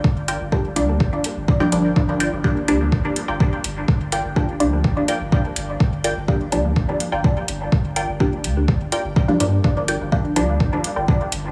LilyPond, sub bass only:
\new Staff \with { instrumentName = "Sub bass" } { \clef bass \time 4/4 \key g \minor \tempo 4 = 125 g,,8. g,,8. d,8. g,,16 r16 g,,16 r8 g,,8 | g,,8. g,,8. d,8. g,,16 r16 g,,16 r8 g,,8 | g,,8. g,,8. d,8. g,,16 r16 g,,16 r8 g,,8 | g,,8. g,,8. d,8. g,,16 r16 g,,16 r8 g,,8 |
g,,8. g,,8. d,8. g,,16 r16 g,,16 r8 g,8 | g,,8. g,,8. d,8. g,,16 r16 g,,16 r8 g,,8 | }